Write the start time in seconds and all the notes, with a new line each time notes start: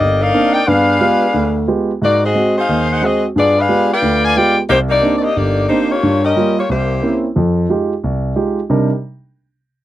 Already playing: A#3 G4 D5 D#5
0.00 G1
0.21 D#4 A#4 D5 F5
0.34 A#3 C4 D4 D#4
0.52 D#4 A#4 D5 G5
0.66 G2 B3 D4 G#4 B4 F5
1.01 G#3 B3 F4 G4
1.34 D2
1.68 G#3 B3 F4 G4
2.02 G#2 A#3 D#4 F#4 D5
2.24 C4 F#4 G#4 D#5
2.35 G#3 C4 F#4
2.58 D#4 G#4 C5 F5
2.69 D#2 D#3
2.91 D#4 G#4 C5 F#5
3.01 G#3 C4 F#4 G#4 D#5
3.36 G2 B3 F4 G#4 D5
3.59 D4 G#4 B4 F5
3.69 G#3 B3 F4 G4
3.93 F4 B4 D5 G5
4.02 D2
4.24 F4 B4 D5 G#5
4.36 G#3 B3 F4 G4 B4 D5 G5
4.69 C2 A#3 D#4 G4 C5
4.89 A#3 D#4 G4 D5
5.02 A#3 C4 D4 D#4
5.18 D5
5.23 A#3 D4 G4 D#5
5.36 G1 A#3 D#4 G4 D5
5.68 A#3 C4 D4 D#4 G4 C5
5.89 A#3 F4 G4 C#5
6.03 G2
6.24 C#4 G4 A#4 D#5
6.36 G3 A#3 F4
6.59 A#3 F4 G4 C#5
6.69 C2 A#3 E4 G4 C5
7.02 A#3 C4 C#4 E4
7.36 F2 F3
7.69 G#3 D#4 F4 G4
8.04 C2
8.36 G#3 D#4 F4 G4
8.70 C3 G3 D4 D#4 A#4